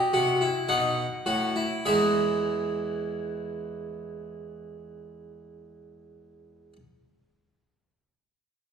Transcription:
0.00 0.13 G4 loud
0.00 0.66 D#5 medium
0.13 0.48 C3 medium
0.13 0.40 F#4 loud
0.41 0.68 E4 medium
0.69 1.04 B2 medium
0.69 1.04 D#4 loud
0.69 1.81 F#5 medium
1.26 1.63 A2 medium
1.26 1.55 F#4 medium
1.56 1.84 E4 medium
1.85 6.73 E2 medium
1.85 6.76 E3 medium
1.85 6.76 G#3 medium
1.85 6.73 G#4 medium
1.85 6.73 E5 medium

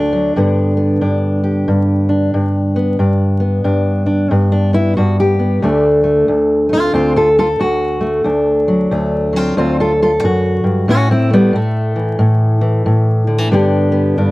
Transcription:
0.00 0.36 D2 medium
0.00 0.11 F#3 soft
0.00 0.37 A3 soft
0.00 1.01 D4 medium
0.13 0.36 F#3 soft
0.36 1.01 G2 medium
0.36 5.62 D3 soft
0.36 0.77 B3 soft
0.77 2.74 B3 soft
1.01 1.67 G2 medium
1.01 2.09 D4 soft
1.44 2.96 G4 soft
1.68 2.33 G2 medium
2.09 2.99 D4 soft
2.34 2.96 G2 medium
2.76 2.97 B3 soft
2.99 3.63 G2 medium
2.99 3.64 D4 soft
3.40 4.30 B3 soft
3.64 4.30 G2 medium
3.64 4.06 D4 medium
4.06 4.32 D4 medium
4.31 4.96 G2 medium
4.31 4.72 B3 medium
4.52 4.74 D4 medium
4.73 5.38 B3 soft
4.73 4.96 E4 loud
4.97 5.60 G2 medium
4.97 5.18 F#4 medium
5.20 5.85 G4 medium
5.39 5.60 B3 soft
5.62 6.28 D2 medium
5.62 10.89 D3 soft
5.62 6.03 A3 medium
5.62 6.72 D4 soft
6.04 6.69 A3 soft
6.28 6.93 D2 medium
6.69 8.00 A3 soft
6.69 6.93 C4 medium
6.69 6.94 F4 medium
6.93 7.58 D2 medium
6.93 7.16 C4 medium
6.93 7.15 F4 medium
7.16 7.28 F4 medium
7.16 7.38 A4 medium
7.39 7.47 F4 medium
7.39 7.60 A4 loud
7.59 8.23 D2 medium
7.59 8.25 F#4 medium
8.01 8.68 A3 soft
8.24 8.90 D2 medium
8.24 9.37 D4 soft
8.68 9.31 F#3 soft
8.91 9.56 D2 medium
8.91 9.36 A3 medium
9.33 10.89 F#3 soft
9.33 9.56 C4 medium
9.33 9.57 F4 medium
9.57 10.23 D2 medium
9.57 9.79 C4 medium
9.57 9.79 F4 medium
9.80 9.91 F4 medium
9.80 10.02 A4 medium
10.02 10.11 F4 medium
10.02 10.23 A4 medium
10.23 10.63 F#2 medium
10.23 10.89 F#4 medium
10.64 10.88 G2 medium
10.88 11.52 A2 medium
10.88 11.10 C#4 medium
10.88 11.11 F#4 loud
11.11 11.32 C4 medium
11.11 11.99 E4 medium
11.30 11.55 G3 medium
11.30 11.54 A3 soft
11.30 11.55 B3 medium
11.53 12.18 A2 medium
11.53 13.52 A3 medium
11.96 12.60 E3 soft
12.19 12.85 A2 medium
12.61 13.26 E3 medium
12.86 13.51 A2 medium
13.27 13.38 D3 medium
13.38 13.51 E3 soft
13.51 14.16 G2 medium
13.51 14.31 D3 medium
13.51 13.91 B3 medium
13.51 14.17 D4 medium
13.51 14.31 G4 medium
13.92 14.31 B3 medium
14.18 14.31 G2 medium
14.18 14.31 D4 medium

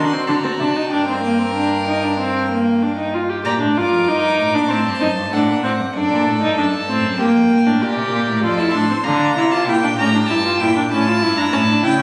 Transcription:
0.00 0.14 D4 medium
0.00 0.93 F#4 medium
0.00 0.29 C6 medium
0.13 0.28 C4 medium
0.27 0.36 D3 medium
0.27 0.35 D4 medium
0.27 0.37 A5 medium
0.35 0.45 A#5 medium
0.43 0.50 C4 medium
0.43 0.53 A5 medium
0.52 0.61 A#5 medium
0.59 0.67 C3 medium
0.59 0.78 D4 medium
0.59 0.90 A5 medium
0.76 0.92 D#4 medium
0.90 3.10 G2 medium
0.90 1.07 D4 medium
0.90 3.14 A#4 medium
0.90 3.09 G5 medium
1.08 1.23 C4 medium
1.23 1.41 A#3 medium
1.39 1.55 C4 medium
1.56 1.86 D4 medium
1.88 2.05 D#4 medium
2.04 2.19 D4 medium
2.20 2.50 C4 medium
2.52 2.85 A#3 medium
2.83 2.97 D4 medium
2.97 3.15 D#4 medium
3.14 3.31 F4 medium
3.29 3.45 G4 medium
3.45 3.60 A#2 medium
3.45 3.60 G4 medium
3.45 3.53 D5 medium
3.45 3.53 A#5 medium
3.61 3.67 A2 medium
3.61 3.78 D4 medium
3.76 3.91 G2 medium
3.76 4.10 F4 medium
3.76 4.68 A#4 medium
3.76 4.72 D6 medium
3.92 4.07 F2 medium
4.07 4.40 G2 medium
4.07 4.56 D#4 medium
4.39 4.54 A2 medium
4.54 4.69 A#2 medium
4.54 4.72 D4 medium
4.70 4.84 A2 medium
4.70 5.00 C4 medium
4.70 5.31 C5 medium
4.70 5.34 A5 medium
4.85 5.01 G2 medium
5.01 5.15 F#2 medium
5.01 5.09 D#4 medium
5.16 5.31 G2 medium
5.32 5.49 A2 medium
5.32 5.63 D4 medium
5.32 5.63 A4 medium
5.32 5.95 F#5 medium
5.47 5.62 A#2 medium
5.63 5.69 A2 medium
5.63 5.72 C4 medium
5.63 5.72 C5 medium
5.78 5.85 G2 medium
5.94 6.09 F#2 medium
5.94 6.41 D4 medium
5.94 7.17 A4 medium
5.94 6.57 D5 medium
6.10 6.27 A#2 medium
6.26 6.43 A2 medium
6.42 6.59 G2 medium
6.42 6.57 D#4 medium
6.57 6.74 F#2 medium
6.57 6.66 D4 medium
6.57 7.19 A5 medium
6.73 6.89 G2 medium
6.88 7.05 A2 medium
6.88 7.19 C4 medium
7.03 7.20 F#2 medium
7.18 7.34 G2 medium
7.18 7.68 A#3 medium
7.18 7.27 G4 medium
7.18 7.83 G5 medium
7.35 7.41 F2 medium
7.49 7.56 G2 medium
7.49 8.42 A#4 medium
7.65 7.80 A2 medium
7.65 7.83 D4 medium
7.81 7.98 A#2 medium
7.81 8.43 G4 medium
7.81 8.42 D5 medium
7.96 8.11 C3 medium
8.12 8.27 A#2 medium
8.27 8.44 A2 medium
8.43 8.73 F2 medium
8.43 8.61 F4 medium
8.43 9.06 A4 medium
8.43 8.60 D5 medium
8.58 8.76 E4 medium
8.58 8.73 A5 medium
8.73 8.82 A2 medium
8.73 8.90 D4 medium
8.73 9.06 C6 medium
8.90 8.96 C4 medium
9.04 9.35 D3 medium
9.04 9.36 D4 medium
9.04 9.69 F4 medium
9.04 9.53 A#5 medium
9.36 9.68 C3 medium
9.36 9.52 E4 medium
9.51 9.68 F4 medium
9.51 9.66 A5 medium
9.67 9.97 A#2 medium
9.67 9.74 E4 medium
9.67 10.91 G4 medium
9.67 9.98 G5 loud
9.83 9.89 D4 medium
9.98 10.28 A2 medium
9.98 10.13 C#4 medium
9.98 10.28 A#5 loud
10.14 10.20 D4 medium
10.28 10.59 G2 medium
10.28 10.36 E4 medium
10.28 10.59 A5 loud
10.45 10.62 F4 medium
10.60 10.90 A#2 medium
10.60 10.76 E4 medium
10.60 10.90 G5 medium
10.76 10.82 D4 medium
10.90 11.23 A2 medium
10.90 11.09 C#4 medium
10.90 12.02 E4 loud
10.90 11.39 A5 loud
11.08 11.24 F4 medium
11.21 11.51 G2 medium
11.21 11.37 E4 medium
11.38 11.44 D4 medium
11.38 11.54 A#5 loud
11.52 11.82 A2 medium
11.52 11.59 C#4 medium
11.52 11.83 A5 loud
11.68 11.85 D4 medium
11.83 12.02 C#3 medium
11.83 11.98 E4 medium
11.83 12.02 G5 loud
11.99 12.02 C#4 medium

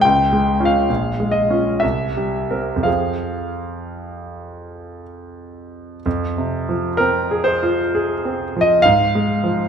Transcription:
0.01 0.87 C#2 medium
0.01 0.66 G5 medium
0.33 0.78 G#3 soft
0.60 0.86 C#4 soft
0.60 0.87 F4 soft
0.65 1.33 F5 medium
0.89 1.79 A#1 soft
1.20 1.70 G#3 soft
1.31 1.81 D#5 medium
1.50 1.79 C#4 soft
1.50 1.80 F4 soft
1.80 2.83 C2 soft
1.80 2.85 E5 medium
2.17 2.73 G3 soft
2.51 2.82 C4 soft
2.51 2.83 A#4 soft
2.76 5.96 F2 soft
2.83 5.99 F3 soft
2.83 6.00 C4 soft
2.83 6.00 G#4 soft
2.83 5.00 F5 medium
6.06 8.80 F2 medium
6.37 6.87 C3 soft
6.69 7.19 F3 soft
6.97 7.50 C4 soft
6.97 7.45 A#4 medium
7.31 7.80 G#4 soft
7.44 8.61 C5 medium
7.63 8.12 F4 medium
7.95 8.43 G#4 medium
8.25 8.73 C4 soft
8.56 8.85 F3 soft
8.61 8.84 D#5 medium
8.82 9.68 G#2 medium
8.82 9.68 F5 medium
9.15 9.60 G#3 soft
9.44 9.68 F3 soft

